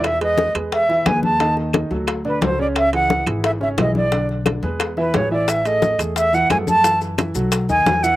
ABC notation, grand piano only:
X:1
M:4/4
L:1/8
Q:1/4=176
K:E
V:1 name="Grand piano"
z [G,GB]2 [G,GB]2 [E,Ee] [G,GB]2 | [D,Dd]2 [D,Dd] [F,FA]2 [=D,=D=d] [F,FA] [C,Cc]- | [C,Cc] [E,EG]2 [E,EG]2 [C,Cc] [E,EG]2 | [=D,=D=d]2 [D,Dd] [G,GB]2 [E,Ee] [G,GB] [E,Ee]- |
[E,Ee] [A,GA]2 [A,GA]2 [E,Ee] [A,GA]2 | [E,Ee]2 [E,Ee] [F,FA]2 [D,Dd] [F,FA] [E,Ee] |]